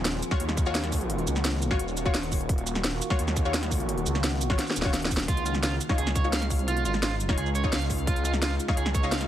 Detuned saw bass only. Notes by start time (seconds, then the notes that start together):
Already playing: D#1
0.40 D#2
1.27 C#2
1.79 D#1
2.49 D#1
3.19 D#2
4.06 C#2
4.76 D#1
5.28 C#2
5.98 C#2
6.59 C2
6.85 G#1
7.38 C#2
8.07 C#2
8.77 C#2